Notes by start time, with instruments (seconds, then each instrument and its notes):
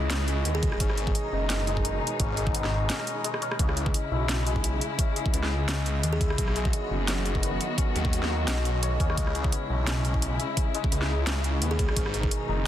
Already playing: detuned saw bass C#2, string section C#3 G#3 E4, santur G#3 B3 C#4 E4 G#4 C#5, synth drone D#5
0.10 santur C#4, snare, closed hi-hat
0.28 santur G#4, closed hi-hat
0.45 detuned saw bass D#2, santur B3, closed hi-hat
0.55 kalimba G#4
0.63 kick, closed hi-hat
0.72 cross-stick
0.80 detuned saw bass G#1, string section B2 D#3 D#4, santur C#4, kick, closed hi-hat
0.90 cross-stick
0.98 closed hi-hat
1.07 kick
1.15 closed hi-hat
1.32 detuned saw bass F#1, santur D#4
1.50 snare, closed hi-hat
1.67 santur G#3, closed hi-hat
1.77 kick
1.85 closed hi-hat
2.07 closed hi-hat
2.20 detuned saw bass G#1, santur C#4, kick, closed hi-hat
2.37 santur G#4, closed hi-hat
2.47 kick
2.55 detuned saw bass G#1, santur B3, closed hi-hat
2.64 snare
2.90 santur C#4, snare, closed hi-hat
2.99 cross-stick
3.07 closed hi-hat
3.24 santur G#3, closed hi-hat
3.34 cross-stick
3.42 santur C#4, closed hi-hat
3.52 cross-stick
3.59 detuned saw bass C#2, string section C#3 G#3 E4, santur C#4, synth drone D#5, kick, closed hi-hat
3.69 cross-stick
3.77 closed hi-hat
3.86 kick
3.94 closed hi-hat
4.12 detuned saw bass B1, santur E4
4.29 snare, closed hi-hat
4.46 santur G#3, closed hi-hat
4.56 kick
4.64 closed hi-hat
4.81 closed hi-hat
4.99 santur C#4, kick, closed hi-hat
5.16 santur G#4, closed hi-hat
5.26 kick
5.33 detuned saw bass C#2, santur B3, closed hi-hat
5.43 snare
5.68 santur C#4, snare, closed hi-hat
5.86 closed hi-hat
6.03 detuned saw bass D#2, closed hi-hat
6.13 kalimba G#4
6.21 santur E4, kick, closed hi-hat
6.30 cross-stick
6.38 detuned saw bass B1, string section D#3 F#3 B3 F#4, kick, closed hi-hat
6.48 cross-stick
6.56 santur G#3, closed hi-hat
6.65 kick
6.73 closed hi-hat
6.91 detuned saw bass F#1
7.08 santur C#4, snare, closed hi-hat
7.26 santur G#4, closed hi-hat
7.35 kick
7.43 santur B3, closed hi-hat
7.61 closed hi-hat
7.78 santur C#4, kick, closed hi-hat
7.96 detuned saw bass D#2, closed hi-hat
8.05 kick
8.13 closed hi-hat
8.23 snare
8.30 santur D#4
8.48 detuned saw bass B1, snare, closed hi-hat
8.57 cross-stick
8.65 santur C#4, closed hi-hat
8.83 santur C#5, closed hi-hat
9.00 detuned saw bass D#2, santur C#4, kick, closed hi-hat
9.10 cross-stick
9.17 detuned saw bass C#2, string section C#3 G#3 E4, santur C#4, kick, closed hi-hat
9.27 cross-stick
9.35 santur G#4, closed hi-hat
9.44 kick
9.52 santur B3, closed hi-hat
9.70 detuned saw bass B1
9.87 santur C#4, snare, closed hi-hat
10.05 closed hi-hat
10.14 kick
10.22 closed hi-hat
10.39 santur E4, closed hi-hat
10.57 kick, closed hi-hat
10.74 santur G#3, closed hi-hat
10.84 kick
10.92 detuned saw bass C#2, closed hi-hat
11.01 snare
11.27 santur C#4, snare, closed hi-hat
11.44 santur G#4, closed hi-hat
11.62 detuned saw bass D#2, santur B3, closed hi-hat
11.71 kalimba G#4
11.79 kick, closed hi-hat
11.89 cross-stick
11.96 detuned saw bass G#1, string section B2 D#3 D#4, santur C#4, kick, closed hi-hat
12.06 cross-stick
12.14 closed hi-hat
12.23 kick
12.31 closed hi-hat
12.49 detuned saw bass F#1, santur D#4